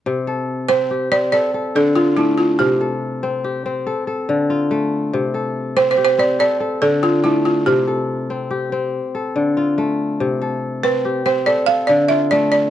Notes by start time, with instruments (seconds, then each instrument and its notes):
0.06 kora C3
0.27 kora A4
0.69 kora C4, balafon C5
0.91 kora G4
1.12 kora C4, balafon D5
1.32 kora A4, balafon D5
1.54 kora A4
1.75 kora D3, balafon A4
1.96 balafon F4, kora F4
2.17 kora A3, balafon E4
2.38 balafon F4
2.59 kora C3, balafon G4
2.81 kora A4
3.23 kora C4
3.44 kora G4
3.66 kora C4
3.87 kora A4
4.07 kora A4
4.29 kora D3
4.50 kora F4
4.71 kora A3
5.13 kora C3
5.34 kora A4
5.76 kora C4, balafon C5
5.91 balafon C5
5.97 kora G4
6.05 balafon C5
6.18 kora C4, balafon D5
6.39 kora A4, balafon D5
6.60 kora A4
6.82 kora D3, balafon A4
7.03 balafon F4, kora F4
7.24 kora A3, balafon E4
7.45 balafon F4
7.66 kora C3, balafon G4
7.88 kora A4
8.30 kora C4
8.51 kora G4
8.72 kora C4
9.15 kora A4
9.36 kora D3
9.57 kora F4
9.78 kora A3
10.20 kora C3
10.42 kora A4
10.83 kora C4, balafon B4
11.05 kora G4
11.26 kora C4, balafon C5
11.46 kora A4, balafon D5
11.66 kora A4, balafon F5
11.87 kora D3, balafon D5
12.08 kora F4, balafon E5
12.31 kora A3, balafon D5
12.52 balafon D5